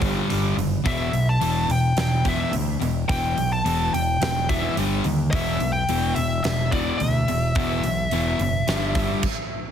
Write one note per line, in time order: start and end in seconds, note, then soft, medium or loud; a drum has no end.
0.00 0.21 G1 medium
0.00 0.27 G2 medium
0.00 0.28 D3 medium
0.00 0.28 G3 medium
0.00 kick medium
0.00 open hi-hat medium
0.28 0.53 G1 medium
0.28 0.55 G2 medium
0.28 0.56 D3 medium
0.28 0.56 G3 medium
0.28 open hi-hat medium
0.57 0.80 F#1 medium
0.57 0.82 G2 medium
0.57 0.83 D3 medium
0.57 open hi-hat soft
0.84 1.09 E1 medium
0.84 1.10 E2 medium
0.84 1.11 B2 medium
0.84 1.12 E3 medium
0.84 1.29 E5 medium
0.84 kick medium
0.84 open hi-hat medium
1.12 1.36 B1 medium
1.12 1.38 E2 medium
1.12 1.38 B2 medium
1.12 open hi-hat soft
1.29 1.71 A5 loud
1.40 1.64 E1 medium
1.40 1.67 E2 medium
1.40 1.67 B2 medium
1.40 1.68 E3 medium
1.40 open hi-hat medium
1.69 1.92 E1 medium
1.69 1.95 E2 medium
1.69 1.95 B2 medium
1.69 1.99 G5 medium
1.69 open hi-hat medium
1.96 2.43 E1 medium
1.96 2.22 E2 medium
1.96 2.22 B2 medium
1.96 2.28 G5 medium
1.96 snare loud
1.96 open hi-hat medium
2.25 2.50 E2 medium
2.25 2.51 B2 medium
2.25 2.52 E3 medium
2.25 2.53 E5 medium
2.25 kick medium
2.25 open hi-hat medium
2.52 2.76 D2 medium
2.52 2.78 E2 medium
2.52 2.78 B2 medium
2.52 open hi-hat medium
2.80 3.04 E1 medium
2.80 3.06 E2 medium
2.80 3.06 B2 medium
2.80 open hi-hat soft
3.08 3.32 E1 medium
3.08 3.35 E2 medium
3.08 3.35 B2 medium
3.08 3.35 E3 medium
3.08 3.52 G5 medium
3.08 kick loud
3.08 open hi-hat medium
3.36 3.61 B1 medium
3.36 3.62 E2 medium
3.36 3.62 B2 medium
3.36 open hi-hat soft
3.53 3.94 A5 loud
3.64 3.88 E1 medium
3.64 3.91 E2 medium
3.64 3.91 B2 medium
3.64 3.92 E3 medium
3.64 open hi-hat medium
3.93 4.16 E1 medium
3.93 4.18 E2 medium
3.93 4.19 B2 medium
3.93 4.21 G5 medium
3.93 open hi-hat medium
4.21 4.67 E1 medium
4.21 4.46 E2 medium
4.21 4.46 B2 medium
4.21 4.48 G5 medium
4.21 snare loud
4.21 open hi-hat medium
4.49 4.75 E2 medium
4.49 4.75 B2 medium
4.49 4.75 E3 loud
4.49 4.75 E5 medium
4.49 kick medium
4.49 open hi-hat medium
4.77 5.00 G1 medium
4.77 5.03 G2 medium
4.77 5.04 D3 medium
4.77 5.04 G3 loud
4.77 open hi-hat medium
5.04 5.28 D#2 medium
5.04 5.31 G2 medium
5.04 5.31 D3 medium
5.04 open hi-hat soft
5.31 5.56 E1 loud
5.31 5.59 E2 medium
5.31 5.59 B2 medium
5.31 5.59 E3 loud
5.31 5.72 E5 loud
5.31 kick loud
5.31 open hi-hat medium
5.59 5.83 B1 medium
5.59 5.86 E2 medium
5.59 5.86 B2 medium
5.59 open hi-hat soft
5.73 6.15 G5 loud
5.89 6.12 E1 medium
5.89 6.15 E2 medium
5.89 6.15 B2 medium
5.89 6.15 E3 medium
5.89 open hi-hat medium
6.15 6.40 E1 medium
6.15 6.42 E2 medium
6.15 6.42 B2 medium
6.15 6.42 E5 medium
6.15 open hi-hat medium
6.44 6.91 E1 medium
6.44 6.70 E2 medium
6.44 6.70 B2 medium
6.44 6.73 E5 medium
6.44 snare loud
6.44 open hi-hat medium
6.71 6.99 E2 medium
6.71 6.99 B2 loud
6.71 6.99 E3 medium
6.71 7.01 D5 medium
6.71 kick medium
6.71 open hi-hat medium
6.98 7.23 D2 medium
6.98 7.25 E2 medium
6.98 7.26 B2 medium
6.98 9.18 E5 medium
6.98 open hi-hat medium
7.28 7.51 E1 medium
7.28 7.53 E2 medium
7.28 7.53 B2 medium
7.28 open hi-hat soft
7.55 7.79 E1 loud
7.55 7.82 E2 medium
7.55 7.82 B2 medium
7.55 7.82 E3 loud
7.55 kick loud
7.55 open hi-hat medium
7.83 8.06 B1 medium
7.83 8.09 E2 medium
7.83 8.09 B2 medium
7.83 open hi-hat medium
8.11 8.35 E1 medium
8.11 8.38 E2 medium
8.11 8.38 B2 medium
8.11 8.39 E3 medium
8.11 open hi-hat medium
8.39 8.62 F#1 medium
8.39 8.65 E2 medium
8.39 8.65 B2 medium
8.39 open hi-hat soft
8.67 9.13 G1 medium
8.67 8.93 G2 medium
8.67 8.94 D3 medium
8.67 8.94 G3 medium
8.67 snare loud
8.67 open hi-hat medium
8.95 9.22 G2 medium
8.95 9.22 D3 medium
8.95 9.22 G3 medium
8.95 kick loud
8.95 open hi-hat medium
9.23 kick medium
9.23 crash medium